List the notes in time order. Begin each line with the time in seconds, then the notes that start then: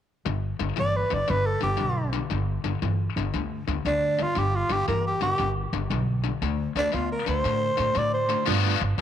0.26 G1 G2 D3
0.59 G1 G2 D3
0.76 G1 G2 E3 D5
0.96 B4
1.10 G1 G2 D3 D5
1.28 G1 G2 D3 B4
1.46 A4
1.61 G1 G2 D3 G4
1.77 B1 G2 D3
2.13 G2 D3
2.30 G1 G2 D3
2.64 G1 G2 D3
2.82 G1 G2 E3
3.16 G1 G2 D3
3.34 D2 G2 D3
3.68 D2 G2 D3
3.85 D2 G2 D3 D4
4.19 G2 D3 F4
4.35 G1 G2 D3 G4
4.55 F4
4.69 G1 G2 D3 G4
4.88 G1 G2 E3 A#4
5.07 G4
5.21 G1 G2 D3 G4
5.38 G1 G2 D3
5.73 G1 G2 D3
5.90 B1 G2 D3
6.24 G2 D3
6.42 D2 D3 A3
6.75 D2 D3 A3 D4
6.92 D2 D3 B3 F4
7.12 A#4
7.26 D2 D3 A3 C5
7.44 A2 D3 A3
7.77 A2 D3 A3
7.95 A2 D3 A3 D5
8.14 C5
8.29 D3 A3
8.46 G1 G2 F3 G3 A3 B3 D4 F4
8.80 G1, muted overdriven electric guitar stroke
8.98 G1, muted overdriven electric guitar stroke